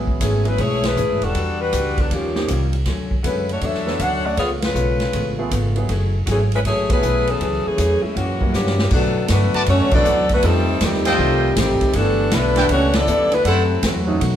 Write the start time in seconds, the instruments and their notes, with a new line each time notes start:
Already playing: upright bass A1, grand piano F#3 B3 E4 G#4, hollow-body jazz guitar E4
0.07 kick
0.20 upright bass G#1, hollow-body jazz guitar A2 G#3 C#4 E4, saxophone section E3 A3 C#4 G#4, kick, hi-hat pedal, ride
0.45 grand piano F#3 B3 E4 G#4, saxophone section G#3 C#4 E4 B4, ride
0.58 upright bass B1, hollow-body jazz guitar A2 G#3 C#4 E4, saxophone section A3 E4 G#4 C#5, kick, ride
0.83 saxophone section A3 E4 G#4 B4, snare, ride
0.95 upright bass A1, hollow-body jazz guitar A2 G#3 C#4 E4, hi-hat pedal
1.09 upright bass G#1
1.21 upright bass E1, saxophone section G3 D4 F#4 A4, ride
1.34 upright bass E2, hollow-body jazz guitar E3 G3 D4 F#4, kick, ride
1.60 saxophone section G3 D4 F#4 B4
1.73 upright bass C#2, hollow-body jazz guitar E3 G3 D4 F#4, kick, hi-hat pedal, ride
1.98 saxophone section F#3 B3 D4 A4, kick, ride
2.09 upright bass D#2, hollow-body jazz guitar D#3 G3 C#4 F4, kick, ride
2.14 saxophone section F3 A#3 C#4 G4
2.35 grand piano F3 A#3 D#4 G4, snare
2.48 upright bass C2, hollow-body jazz guitar D#3 G3 C#4 F4, kick, hi-hat pedal, ride
2.73 ride
2.85 upright bass D2, hollow-body jazz guitar D3 F#3 A3 C#4, kick, snare, ride
3.11 kick
3.23 upright bass F#2, hollow-body jazz guitar D3 F#3 A3 C#4, saxophone section G#3 C#4 E4 B4, kick, hi-hat pedal, ride
3.49 saxophone section A3 D4 F#4 C#5, ride
3.61 upright bass E2, hollow-body jazz guitar D3 F#3 A3 C#4, saxophone section D4 A4 C#5 E5, kick, ride
3.75 snare
3.86 grand piano F#3 B3 E4 A4, snare
3.98 upright bass D2, hollow-body jazz guitar D3 F#3 A3 C#4, saxophone section D4 A4 C#5 F#5, kick, hi-hat pedal, ride
4.26 saxophone section A3 C#4 F#4 D5
4.37 upright bass C#2, hollow-body jazz guitar C#3 A3 B3 F4, saxophone section B3 F4 G#4 C#5, kick, ride
4.62 saxophone section G#3 C#4 F4 B4, snare, ride
4.74 upright bass B1, hollow-body jazz guitar C#3 A3 B3 F4, hi-hat pedal
5.00 snare, ride
5.12 upright bass A1, hollow-body jazz guitar C#3 A3 B3 F4, kick, ride
5.39 grand piano A3 B3 F4 G#4
5.51 upright bass G#1, hollow-body jazz guitar C#3 A3 B3 F4, kick, hi-hat pedal, ride
5.76 grand piano F#3 B3 E4 G#4, ride
5.89 upright bass F#1, hollow-body jazz guitar F#3 A3 E4 G#4, kick, ride
6.26 upright bass G#1, hollow-body jazz guitar F#3 A3 E4 G#4, kick, hi-hat pedal, ride
6.31 saxophone section E3 A3 C#4 G#4
6.52 saxophone section G#3 C#4 E4 B4, ride
6.65 upright bass A1, hollow-body jazz guitar F#3 A3 E4 G#4, saxophone section A3 E4 G#4 C#5, kick, ride
6.89 grand piano F#3 B3 E4 G#4, saxophone section A3 E4 G#4 B4, kick, ride
7.02 upright bass B1, hollow-body jazz guitar F#3 A3 E4 G#4, hi-hat pedal
7.27 saxophone section E3 C#4 G#4 A4, ride
7.40 upright bass C#2, hollow-body jazz guitar F#3 A3 E4 G#4, kick, ride
7.66 saxophone section E3 A3 C#4 G#4, muted upright bass stroke
7.77 upright bass E2, hollow-body jazz guitar F#3 A3 E4 G#4, kick, hi-hat pedal, ride
8.03 saxophone section G#3 A3 C#4 E4, muted upright bass stroke
8.14 upright bass F#2, trombone section A#2 C#3 F#3, saxophone section E3 A#3 C#4 F#4, hollow-body jazz guitar F#3 A#3 E4 G4, kick, ride
8.40 grand piano G3 A#3 C#4 E4, kick
8.52 upright bass G2, trombone section C#3 E3 G3, saxophone section E3 A#3 C#4 G4, hollow-body jazz guitar F#3 A#3 E4 G4, snare, hi-hat pedal
8.66 snare
8.79 snare
8.91 hollow-body jazz guitar B2 F#3 A3 D4, upright bass B2, trombone section D3 F#3 A3, saxophone section F#3 B3 D4 A4, kick, crash
9.28 upright bass G2, hollow-body jazz guitar B2 F#3 A3 D4, trombone section D3 F#3 B3, saxophone section A3 F#4 B4, kick, snare, hi-hat pedal, ride
9.32 saxophone section D4
9.54 trumpet section F#4 B4 D5 A5, muted upright bass stroke, ride
9.66 upright bass F#2, hollow-body jazz guitar B2 F#3 A3 D4, saxophone section A3 D4 C#5, trombone section C#4, kick, ride
9.70 saxophone section F#4
9.81 upright bass D2
9.91 upright bass B1, grand piano E3 A3 D4 F#4, trombone section F#3 A3 D4, saxophone section B3 F#4 A4 D5, kick, crash
10.04 upright bass D2, hollow-body jazz guitar B2 F#3 A3 D4, hi-hat pedal
10.29 trombone section D3 F#3 B3, kick, ride
10.33 saxophone section A3 D4 F#4 B4
10.42 upright bass F2, trombone section C3 D#3 A3, hollow-body jazz guitar F3 A3 D#4 G4, grand piano G3 C4 F4 A4, saxophone section G3 C4 D#4 A4, kick, ride
10.81 upright bass D#2, trombone section C3 D#3 G3, saxophone section D#3 A3 C4 G4, hollow-body jazz guitar F3 A3 D#4 G4, kick, snare, hi-hat pedal, ride
10.94 snare
11.05 grand piano G3 C4 F4 C5, trumpet section F4 A4 D#5 G5, snare, ride
11.18 upright bass C2, hollow-body jazz guitar F3 A3 D#4 G4, kick
11.56 upright bass A1, trombone section C3 D#3 G3, saxophone section D#3 A3 C4 G4, hollow-body jazz guitar F3 A3 D#4 G4, kick, snare, hi-hat pedal, ride
11.81 muted upright bass stroke, kick, ride
11.93 upright bass G1, trombone section D3 E3 A3, saxophone section E3 B3 D4 A4, hollow-body jazz guitar G3 B3 E4 A4, kick, ride
12.31 upright bass B1, trombone section D3 E3 B3, hollow-body jazz guitar G3 B3 E4 A4, saxophone section A3 D4 E4 B4, kick, snare, hi-hat pedal, ride
12.56 grand piano E3 A3 D4 F#4, trumpet section E4 A4 B4 G5, snare, ride
12.69 upright bass C#2, hollow-body jazz guitar G3 B3 E4 A4, saxophone section A3 F#4 C#5, trombone section C#4, kick, ride
12.73 saxophone section D4
12.93 trombone section E3 B3 D4, saxophone section B3 E4 A4 D5, snare, ride
13.07 upright bass D2, hollow-body jazz guitar G3 B3 E4 A4, hi-hat pedal
13.32 trombone section D3 E3 B3, saxophone section A3 D4 E4 B4, ride
13.45 upright bass F#2, hollow-body jazz guitar F#2 E3 A3 C4, trombone section C3 E3 A3, saxophone section F#3 C4 E4 A4, trumpet section E4 A4 C5 F#5, kick, ride
13.83 upright bass E2, hollow-body jazz guitar F#2 E3 A3 C4, trombone section A2 C3 F#3, saxophone section E3 A3 C4 F#4, kick, snare, hi-hat pedal, ride
14.07 grand piano F#3 A3 C#4 D#4
14.20 hollow-body jazz guitar B2 F#3 A3 D#4, upright bass B2, kick, ride